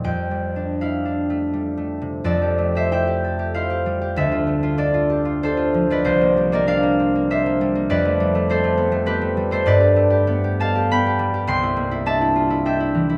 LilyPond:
\new Staff \with { instrumentName = "Harp" } { \time 3/4 \key f \lydian \tempo 4 = 97 << { <f'' g''>4 f''2 | <a' d''>8. <c'' e''>16 <e'' g''>4 <c'' f''>4 | <a' e''>4 <a' d''>4 <a' c''>8. <b' d''>16 | <g' c''>8. <bes' d''>16 <d'' f''>4 <c'' e''>4 |
<b' d''>4 <a' c''>4 <g' b'>8. <a' c''>16 | <b' d''>4. <f'' a''>8 <g'' b''>4 | <g'' c'''>4 <e'' a''>4 <e'' g''>4 | } \\ { \tuplet 3/2 { <f, g>8 g8 d'8 e'8 d'8 a8 g8 a8 c8 } | f,16 g'16 a16 g'16 e'16 g'16 a'16 g'16 e'16 g'16 g16 g'16 | d,16 f'16 a16 f'16 d'16 f'16 g'16 f'16 d'16 f'16 f16 f'16 | c,16 bes16 g16 bes16 d'16 bes16 c'16 bes16 d'16 bes16 g16 bes16 |
f,16 a16 g16 a16 c'16 a16 b16 a16 c'16 a16 g16 a16 | g,16 g'16 a16 g'16 b16 g'16 a'16 g'16 b16 g'16 g16 g'16 | c,16 e'16 bes16 e'16 d'16 e'16 f'16 e'16 d'16 e'16 e16 e'16 | } >> }